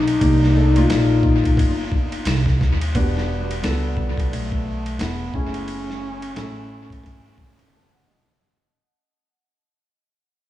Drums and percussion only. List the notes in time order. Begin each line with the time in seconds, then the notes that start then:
0.08 ride
0.21 kick, ride
0.43 snare
0.76 ride
0.90 snare, hi-hat pedal, ride
1.23 kick
1.44 kick, ride
1.57 kick, ride
1.92 kick
2.12 ride
2.25 snare, hi-hat pedal, ride
2.46 kick, snare
2.61 kick, snare
2.81 ride
2.95 kick, ride
3.17 snare
3.51 ride
3.64 snare, hi-hat pedal, ride
3.97 kick
4.18 kick, ride
4.33 ride
4.52 kick
4.86 ride
4.99 snare, hi-hat pedal, ride
5.34 kick
5.54 ride
5.68 ride
5.90 snare
6.22 ride
6.36 snare, hi-hat pedal, ride
6.90 kick, ride
7.04 kick, ride
7.38 kick
7.59 ride